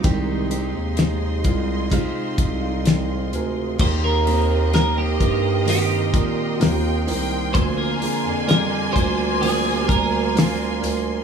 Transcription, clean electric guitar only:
3.81 4.02 C5 loud
4.04 4.70 A#4 medium
4.75 4.96 A#4 medium
4.98 5.68 G4 medium
5.70 6.61 G4 medium
6.61 7.05 F4 medium
7.54 7.76 C5 loud
7.77 8.44 A#4 loud
8.48 8.61 A#4 medium
8.93 9.41 C5 loud
9.41 9.78 G#4 medium
9.78 9.88 G4 medium
9.89 10.79 A#4 medium

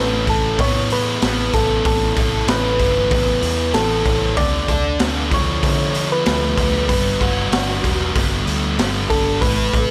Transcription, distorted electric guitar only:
0.00 0.91 A2 medium
0.00 1.53 C#4 medium
0.00 1.25 A4 medium
0.27 0.89 E3 medium
0.59 1.22 B3 medium
0.91 2.48 E3 medium
1.22 3.10 B3 medium
1.54 2.47 C#4 medium
1.85 3.43 A2 medium
2.17 3.75 A4 medium
2.48 4.04 C#4 medium
2.80 3.41 E3 medium
3.11 3.74 B3 medium
3.42 4.37 E3 medium
3.74 4.71 B3 medium
4.05 4.37 C#4 medium
4.36 5.95 D3 medium
4.68 6.26 A4 medium
4.99 6.57 B3 medium
5.30 5.94 F3 medium
5.62 6.24 A3 medium
5.95 6.89 F3 medium
6.26 6.89 A3 medium
6.57 7.53 B3 medium
6.89 7.83 G3 medium
7.21 8.79 F#4 medium
7.53 9.10 D4 medium
7.84 8.46 G3 medium
8.16 8.79 B3 medium
8.48 9.42 G3 medium
8.79 9.45 B3 medium
9.11 9.43 D4 medium
9.42 9.91 A2 medium
9.74 9.91 A4 medium

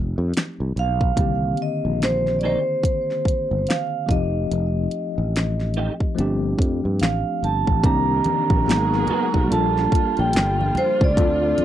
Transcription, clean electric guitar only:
2.43 2.57 A#3 medium
2.43 2.58 D#4 medium
2.43 2.58 G4 medium
5.77 5.91 A3 medium
5.77 5.91 D#4 medium
5.77 5.91 G4 medium
9.10 9.24 B3 medium
9.10 9.25 F#4 medium
9.10 9.25 A#4 medium

